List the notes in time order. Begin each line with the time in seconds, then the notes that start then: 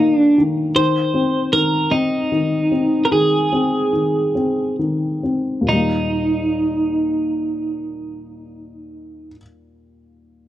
Already playing: A#2 D#3 A#3 D#4
0.15 D4
0.38 D#3
0.75 D#3 C5
1.14 C4
1.53 D#3 A#4
1.91 C4 D#4
2.32 D#3
2.72 C4
3.05 A#4
3.12 D#3 G#4
3.52 C4
3.93 D#3
4.35 C4
4.79 D#3
5.23 C4
5.61 D#2 A#2
5.68 D#3 G3 D#4
5.75 A#3